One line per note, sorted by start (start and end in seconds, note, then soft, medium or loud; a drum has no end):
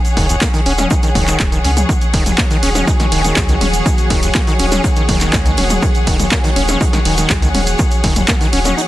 0.00 8.88 G#4 medium
0.00 8.88 C#5 medium
0.00 8.88 F#5 medium
0.05 closed hi-hat soft
0.05 shaker soft
0.17 0.37 D#1 loud
0.17 0.27 D#3 medium
0.17 kick medium
0.17 closed hi-hat medium
0.17 open hi-hat loud
0.29 0.36 D#2 loud
0.29 closed hi-hat medium
0.29 shaker medium
0.41 0.48 A#3 medium
0.41 kick loud
0.41 snare loud
0.41 clap loud
0.41 closed hi-hat loud
0.41 shaker medium
0.54 0.61 D#3 loud
0.54 snare soft
0.54 closed hi-hat soft
0.54 shaker soft
0.66 0.86 D#1 medium
0.66 0.73 C#4 loud
0.66 closed hi-hat medium
0.66 open hi-hat loud
0.78 0.88 C#4 medium
0.78 snare medium
0.78 closed hi-hat soft
0.78 closed hi-hat medium
0.78 mid tom medium
0.78 shaker medium
0.90 0.95 D#4 medium
0.90 kick loud
0.90 closed hi-hat medium
0.90 shaker medium
1.03 1.10 D#3 medium
1.03 closed hi-hat medium
1.03 shaker soft
1.15 1.35 D#1 medium
1.15 1.25 D#3 medium
1.15 kick medium
1.15 closed hi-hat medium
1.15 open hi-hat loud
1.15 mid tom medium
1.27 1.41 D#3 medium
1.27 snare soft
1.27 clap soft
1.27 closed hi-hat medium
1.27 shaker medium
1.40 1.59 D#1 medium
1.40 1.44 A#3 medium
1.40 kick loud
1.40 snare loud
1.40 clap loud
1.40 closed hi-hat medium
1.40 shaker medium
1.52 1.59 D#3 medium
1.52 closed hi-hat medium
1.52 shaker soft
1.64 1.84 C#2 medium
1.64 1.71 C#4 medium
1.64 snare soft
1.64 closed hi-hat medium
1.64 open hi-hat loud
1.77 closed hi-hat medium
1.77 mid tom loud
1.77 shaker medium
1.89 8.88 D#3 medium
1.89 1.93 D#3 medium
1.89 8.88 F#3 medium
1.89 8.88 A#3 medium
1.89 8.88 F#4 medium
1.89 kick loud
1.89 closed hi-hat medium
1.89 shaker medium
2.01 closed hi-hat soft
2.01 shaker soft
2.13 2.33 D#1 loud
2.13 2.24 D#3 medium
2.13 kick medium
2.13 closed hi-hat medium
2.13 open hi-hat loud
2.13 ride medium
2.26 2.33 D#2 loud
2.26 closed hi-hat medium
2.26 mid tom medium
2.26 shaker medium
2.38 2.45 A#3 medium
2.38 kick loud
2.38 snare loud
2.38 clap loud
2.38 closed hi-hat loud
2.38 shaker medium
2.50 2.57 D#3 loud
2.50 snare soft
2.50 closed hi-hat soft
2.50 shaker soft
2.63 2.82 D#1 medium
2.63 2.70 C#4 loud
2.63 closed hi-hat medium
2.63 open hi-hat medium
2.63 ride medium
2.75 2.85 C#4 medium
2.75 snare medium
2.75 closed hi-hat medium
2.75 mid tom medium
2.75 shaker medium
2.87 2.91 D#4 medium
2.87 kick loud
2.87 closed hi-hat medium
2.87 shaker medium
2.99 3.07 D#3 medium
2.99 snare medium
2.99 closed hi-hat soft
2.99 closed hi-hat medium
2.99 shaker soft
3.12 3.32 D#1 medium
3.12 3.22 D#3 medium
3.12 closed hi-hat medium
3.12 open hi-hat loud
3.12 ride medium
3.24 3.38 D#3 medium
3.24 snare soft
3.24 closed hi-hat soft
3.24 closed hi-hat medium
3.24 shaker medium
3.36 3.56 C#2 medium
3.36 3.41 A#3 medium
3.36 kick loud
3.36 snare loud
3.36 clap loud
3.36 closed hi-hat medium
3.36 shaker medium
3.49 3.56 D#3 medium
3.49 snare soft
3.49 closed hi-hat medium
3.49 shaker soft
3.61 3.81 D#1 loud
3.61 3.68 C#4 medium
3.61 snare soft
3.61 closed hi-hat medium
3.61 open hi-hat loud
3.61 mid tom medium
3.61 ride medium
3.74 closed hi-hat medium
3.74 shaker medium
3.86 3.90 D#3 medium
3.86 kick loud
3.86 closed hi-hat medium
3.86 shaker medium
3.97 closed hi-hat soft
3.97 shaker soft
4.10 4.30 D#1 loud
4.10 4.21 D#3 medium
4.10 kick medium
4.10 closed hi-hat medium
4.10 open hi-hat loud
4.10 ride medium
4.23 4.29 D#2 loud
4.23 closed hi-hat medium
4.23 shaker medium
4.35 4.42 A#3 medium
4.35 kick loud
4.35 snare loud
4.35 clap loud
4.35 closed hi-hat medium
4.35 shaker medium
4.47 4.54 D#3 loud
4.47 snare soft
4.47 closed hi-hat soft
4.47 shaker soft
4.59 4.79 D#1 medium
4.59 4.66 C#4 loud
4.59 closed hi-hat medium
4.59 open hi-hat medium
4.59 ride medium
4.72 4.82 C#4 medium
4.72 snare medium
4.72 closed hi-hat medium
4.72 mid tom medium
4.72 shaker medium
4.84 4.88 D#4 medium
4.84 kick loud
4.84 closed hi-hat medium
4.84 shaker medium
4.96 5.03 D#3 medium
4.96 closed hi-hat medium
4.96 shaker soft
5.09 5.28 D#1 medium
5.09 5.19 D#3 medium
5.09 kick medium
5.09 closed hi-hat medium
5.09 open hi-hat loud
5.09 mid tom medium
5.09 ride medium
5.20 5.35 D#3 medium
5.20 snare soft
5.20 clap soft
5.20 closed hi-hat medium
5.20 shaker medium
5.33 5.53 C#2 loud
5.33 5.37 A#3 medium
5.33 kick loud
5.33 snare loud
5.33 clap loud
5.33 closed hi-hat medium
5.33 shaker medium
5.46 5.52 D#3 medium
5.46 closed hi-hat medium
5.46 shaker soft
5.57 5.78 D#1 loud
5.57 5.65 C#4 medium
5.57 snare soft
5.57 closed hi-hat medium
5.57 open hi-hat medium
5.57 ride medium
5.70 closed hi-hat medium
5.70 mid tom medium
5.70 shaker medium
5.82 5.87 D#3 medium
5.82 kick loud
5.82 closed hi-hat medium
5.82 shaker medium
5.95 closed hi-hat soft
5.95 shaker soft
6.07 6.27 D#1 loud
6.07 6.17 D#3 medium
6.07 kick medium
6.07 closed hi-hat medium
6.07 open hi-hat loud
6.07 ride medium
6.19 6.26 D#2 loud
6.19 closed hi-hat medium
6.19 mid tom medium
6.19 shaker medium
6.31 6.38 A#3 medium
6.31 kick loud
6.31 snare loud
6.31 clap loud
6.31 closed hi-hat medium
6.31 shaker medium
6.44 6.51 D#3 loud
6.44 snare soft
6.44 closed hi-hat soft
6.44 shaker soft
6.56 6.76 D#1 medium
6.56 6.63 C#4 loud
6.56 closed hi-hat medium
6.56 open hi-hat medium
6.56 ride medium
6.68 6.79 C#4 medium
6.68 snare medium
6.68 closed hi-hat medium
6.68 mid tom medium
6.68 shaker medium
6.81 6.85 D#4 medium
6.81 kick loud
6.81 closed hi-hat medium
6.81 shaker medium
6.93 7.00 D#3 medium
6.93 snare medium
6.93 closed hi-hat soft
6.93 closed hi-hat medium
6.93 shaker soft
7.05 7.25 D#1 medium
7.05 7.16 D#3 medium
7.05 closed hi-hat medium
7.05 open hi-hat loud
7.05 ride medium
7.18 7.31 D#3 medium
7.18 snare soft
7.18 closed hi-hat medium
7.18 closed hi-hat soft
7.18 shaker medium
7.30 7.50 C#2 loud
7.30 7.34 A#3 medium
7.30 kick loud
7.30 snare loud
7.30 clap loud
7.30 closed hi-hat medium
7.30 shaker medium
7.42 7.49 D#3 medium
7.42 snare soft
7.42 closed hi-hat medium
7.42 shaker soft
7.55 7.74 D#1 loud
7.55 7.61 C#4 medium
7.55 snare soft
7.55 closed hi-hat medium
7.55 open hi-hat medium
7.55 mid tom medium
7.55 ride medium
7.67 closed hi-hat medium
7.67 shaker medium
7.79 7.83 D#3 medium
7.79 kick loud
7.79 closed hi-hat medium
7.79 shaker medium
7.91 closed hi-hat soft
7.91 shaker soft
8.04 8.23 D#1 loud
8.04 8.14 D#3 medium
8.04 kick medium
8.04 snare medium
8.04 closed hi-hat medium
8.04 open hi-hat loud
8.04 ride medium
8.16 8.23 D#2 loud
8.16 closed hi-hat medium
8.16 mid tom medium
8.16 shaker medium
8.28 8.35 A#3 medium
8.28 kick loud
8.28 snare loud
8.28 clap loud
8.28 closed hi-hat medium
8.28 shaker medium
8.40 8.47 D#3 loud
8.40 snare soft
8.40 closed hi-hat soft
8.40 shaker soft
8.53 8.73 D#1 medium
8.53 8.60 C#4 loud
8.53 closed hi-hat medium
8.53 open hi-hat medium
8.53 ride medium
8.65 8.75 C#4 medium
8.65 snare medium
8.65 closed hi-hat soft
8.65 closed hi-hat medium
8.65 mid tom medium
8.65 shaker medium
8.77 8.82 D#4 medium
8.77 closed hi-hat medium
8.77 shaker medium